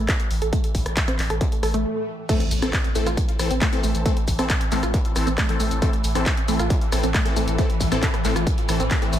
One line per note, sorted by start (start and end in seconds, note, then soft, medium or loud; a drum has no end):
0.00 1.85 A2 medium
0.00 1.85 E3 medium
0.09 kick loud
0.09 cross-stick medium
0.09 clap loud
0.09 closed hi-hat medium
0.20 closed hi-hat medium
0.31 0.41 A1 loud
0.31 open hi-hat medium
0.42 0.52 A1 medium
0.42 0.47 A4 medium
0.42 closed hi-hat medium
0.53 0.58 A3 medium
0.53 kick loud
0.53 closed hi-hat medium
0.64 closed hi-hat medium
0.75 0.85 A1 loud
0.75 kick medium
0.75 open hi-hat loud
0.86 0.97 A1 medium
0.86 cross-stick medium
0.86 closed hi-hat medium
0.97 kick loud
0.97 clap loud
0.97 closed hi-hat medium
1.08 1.16 C4 medium
1.08 cross-stick medium
1.08 closed hi-hat medium
1.19 1.29 A1 loud
1.19 clap medium
1.19 open hi-hat medium
1.30 1.41 A1 medium
1.30 1.35 A4 medium
1.30 cross-stick medium
1.30 closed hi-hat medium
1.41 1.49 A3 medium
1.41 kick loud
1.41 closed hi-hat loud
1.41 swell medium
1.52 closed hi-hat medium
1.63 1.74 A1 loud
1.63 1.68 A4 loud
1.63 cross-stick medium
1.63 open hi-hat loud
1.74 1.85 A1 medium
1.74 1.77 A3 loud
1.74 closed hi-hat medium
2.29 9.19 A2 medium
2.29 2.41 E3 medium
2.29 9.19 E3 medium
2.29 2.34 A3 loud
2.29 2.41 C4 medium
2.29 2.41 A4 medium
2.29 kick loud
2.29 closed hi-hat loud
2.29 crash loud
2.29 impact medium
2.29 shaker soft
2.40 closed hi-hat medium
2.51 2.62 A1 loud
2.51 open hi-hat loud
2.51 shaker medium
2.62 2.73 A1 medium
2.62 2.74 E3 loud
2.62 2.74 C4 medium
2.62 2.65 C4 medium
2.62 2.74 A4 loud
2.62 cross-stick medium
2.62 closed hi-hat medium
2.62 shaker soft
2.73 kick loud
2.73 clap loud
2.73 closed hi-hat medium
2.73 shaker soft
2.84 closed hi-hat medium
2.95 3.06 A1 loud
2.95 3.07 E3 medium
2.95 2.98 A3 medium
2.95 3.07 C4 medium
2.95 3.07 A4 medium
2.95 open hi-hat medium
2.95 shaker medium
3.06 3.17 A1 medium
3.06 3.12 F4 medium
3.06 cross-stick medium
3.06 closed hi-hat medium
3.06 shaker soft
3.17 kick loud
3.17 closed hi-hat loud
3.17 shaker soft
3.29 closed hi-hat medium
3.39 3.50 A1 loud
3.39 3.51 E3 loud
3.39 3.51 C4 loud
3.39 3.51 A4 loud
3.39 cross-stick medium
3.39 open hi-hat loud
3.39 shaker medium
3.51 3.61 A1 medium
3.51 3.54 C4 medium
3.51 closed hi-hat medium
3.51 shaker soft
3.61 3.67 A3 medium
3.61 kick loud
3.61 cross-stick medium
3.61 clap loud
3.61 closed hi-hat loud
3.61 shaker soft
3.73 4.03 E3 medium
3.73 4.03 C4 medium
3.73 4.03 A4 medium
3.73 closed hi-hat medium
3.84 3.94 A1 loud
3.84 3.87 A3 medium
3.84 open hi-hat medium
3.84 shaker medium
3.95 4.05 A1 medium
3.95 closed hi-hat medium
3.95 shaker soft
4.06 4.17 E3 medium
4.06 4.11 A3 loud
4.06 4.17 C4 medium
4.06 4.17 A4 medium
4.06 kick loud
4.06 closed hi-hat loud
4.06 shaker soft
4.17 closed hi-hat medium
4.28 4.38 A1 loud
4.28 kick medium
4.28 open hi-hat loud
4.28 shaker medium
4.39 4.50 A1 medium
4.39 4.50 E3 loud
4.39 4.50 C4 medium
4.39 4.42 C4 medium
4.39 4.50 A4 loud
4.39 cross-stick medium
4.39 closed hi-hat medium
4.39 shaker soft
4.50 kick loud
4.50 clap loud
4.50 closed hi-hat loud
4.50 shaker soft
4.61 closed hi-hat medium
4.72 4.82 A1 loud
4.72 4.83 E3 medium
4.72 4.75 A3 medium
4.72 4.83 C4 medium
4.72 4.83 A4 medium
4.72 clap medium
4.72 open hi-hat medium
4.72 shaker medium
4.83 4.94 A1 medium
4.83 4.88 F4 medium
4.83 cross-stick medium
4.83 closed hi-hat medium
4.83 shaker soft
4.94 kick loud
4.94 closed hi-hat loud
4.94 shaker soft
5.05 closed hi-hat medium
5.16 5.27 A1 loud
5.16 5.27 E3 loud
5.16 5.27 C4 medium
5.16 5.27 A4 loud
5.16 cross-stick medium
5.16 open hi-hat loud
5.16 shaker medium
5.27 5.38 A1 medium
5.27 5.30 C4 medium
5.27 closed hi-hat medium
5.27 shaker soft
5.38 5.43 A3 medium
5.38 kick loud
5.38 cross-stick medium
5.38 clap loud
5.38 closed hi-hat loud
5.38 shaker soft
5.49 5.79 E3 medium
5.49 5.79 C4 medium
5.49 5.79 A4 loud
5.49 closed hi-hat medium
5.60 5.71 A1 loud
5.60 5.63 A3 medium
5.60 open hi-hat loud
5.60 shaker medium
5.71 5.82 A1 medium
5.71 closed hi-hat medium
5.71 shaker soft
5.82 5.94 E3 medium
5.82 5.87 A3 loud
5.82 5.94 C4 medium
5.82 5.94 A4 medium
5.82 kick loud
5.82 closed hi-hat medium
5.82 shaker soft
5.93 closed hi-hat medium
6.04 6.15 A1 loud
6.04 open hi-hat loud
6.04 shaker medium
6.15 6.26 A1 medium
6.15 6.27 E3 loud
6.15 6.18 C4 medium
6.15 6.27 C4 medium
6.15 6.27 A4 loud
6.15 cross-stick medium
6.15 closed hi-hat medium
6.15 shaker soft
6.26 kick loud
6.26 clap loud
6.26 closed hi-hat loud
6.26 shaker soft
6.37 closed hi-hat medium
6.48 6.59 A1 loud
6.48 6.60 E3 medium
6.48 6.51 A3 medium
6.48 6.60 C4 medium
6.48 6.60 A4 medium
6.48 open hi-hat loud
6.48 shaker medium
6.59 6.70 A1 medium
6.59 6.64 F4 medium
6.59 cross-stick medium
6.59 closed hi-hat medium
6.59 shaker soft
6.70 kick loud
6.70 closed hi-hat loud
6.70 shaker soft
6.81 closed hi-hat medium
6.92 7.03 A1 loud
6.92 7.04 E3 loud
6.92 7.04 C4 medium
6.92 7.04 A4 loud
6.92 cross-stick medium
6.92 open hi-hat loud
6.92 shaker medium
7.03 7.14 A1 medium
7.03 7.07 C4 medium
7.03 closed hi-hat medium
7.03 shaker soft
7.14 7.20 A3 medium
7.14 kick loud
7.14 cross-stick medium
7.14 clap loud
7.14 closed hi-hat medium
7.14 shaker soft
7.25 7.56 E3 medium
7.25 7.56 C4 medium
7.25 7.56 A4 loud
7.25 closed hi-hat medium
7.36 7.47 A1 loud
7.36 7.40 A3 medium
7.36 open hi-hat loud
7.36 shaker medium
7.48 7.58 A1 medium
7.48 closed hi-hat medium
7.48 shaker soft
7.58 7.70 E3 medium
7.58 7.64 A3 loud
7.58 7.70 C4 medium
7.58 7.70 A4 medium
7.58 kick loud
7.58 closed hi-hat medium
7.58 shaker soft
7.70 closed hi-hat medium
7.80 7.91 A1 loud
7.80 kick medium
7.80 open hi-hat loud
7.80 shaker medium
7.92 8.02 A1 medium
7.92 8.03 E3 loud
7.92 8.03 C4 medium
7.92 7.95 C4 medium
7.92 8.03 A4 loud
7.92 cross-stick medium
7.92 closed hi-hat medium
7.92 shaker soft
8.03 kick loud
8.03 clap loud
8.03 closed hi-hat medium
8.03 shaker soft
8.14 cross-stick medium
8.14 closed hi-hat medium
8.25 8.35 A1 loud
8.25 8.36 E3 medium
8.25 8.28 A3 medium
8.25 8.36 C4 medium
8.25 8.36 A4 medium
8.25 clap medium
8.25 open hi-hat medium
8.25 shaker medium
8.36 8.47 A1 medium
8.36 8.41 F4 medium
8.36 cross-stick medium
8.36 closed hi-hat medium
8.36 shaker soft
8.47 kick loud
8.47 closed hi-hat medium
8.47 shaker soft
8.58 closed hi-hat soft
8.69 8.80 A1 loud
8.69 8.80 E3 loud
8.69 8.80 C4 medium
8.69 8.80 A4 loud
8.69 cross-stick loud
8.69 open hi-hat loud
8.69 shaker medium
8.80 8.91 A1 medium
8.80 8.83 C4 medium
8.80 closed hi-hat medium
8.80 shaker soft
8.91 8.96 A3 medium
8.91 kick loud
8.91 cross-stick loud
8.91 clap loud
8.91 closed hi-hat medium
8.91 shaker soft
9.02 9.19 E3 medium
9.02 9.19 C4 medium
9.02 9.19 A4 loud
9.02 closed hi-hat medium
9.13 9.19 A1 loud
9.13 9.16 A3 medium
9.13 open hi-hat medium
9.13 shaker medium